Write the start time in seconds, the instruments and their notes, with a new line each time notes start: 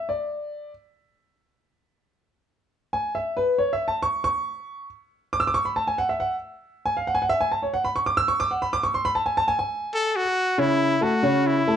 0.09 grand piano D5
2.93 grand piano G#5
3.15 grand piano E5
3.37 grand piano B4
3.58 grand piano C#5
3.73 grand piano E5
3.88 grand piano A5
4.03 grand piano C#6
4.24 grand piano C#6
5.33 grand piano D6
5.40 grand piano E6
5.47 grand piano D6
5.54 grand piano C#6
5.65 grand piano B5
5.76 grand piano A5
5.87 grand piano G#5
5.98 grand piano F#5
6.09 grand piano E5
6.20 grand piano F#5
6.86 grand piano G#5
6.97 grand piano F5
7.07 grand piano F#5
7.15 grand piano G#5
7.22 grand piano F#5
7.29 grand piano E5
7.41 grand piano G#5
7.52 grand piano A5
7.62 grand piano C#5
7.74 grand piano F#5
7.84 grand piano B5
7.96 grand piano C#6
8.06 grand piano D6
8.17 grand piano E6
8.28 grand piano C#6
8.40 grand piano D6
8.51 grand piano F#5
8.62 grand piano B5
8.73 grand piano D6
8.83 grand piano C#6
8.94 grand piano C6
9.05 grand piano B5
9.15 grand piano A5
9.26 grand piano G#5
9.37 grand piano A5
9.48 grand piano G#5
9.59 grand piano G#5
9.95 trumpet A4
10.16 trumpet F#4
10.58 grand piano C#3 C#4 C#5, trumpet E4
11.01 grand piano A3 A4 A5, trumpet F#4
11.23 grand piano C#3 C#4 C#5
11.47 trumpet E4
11.68 grand piano A3 A4 A5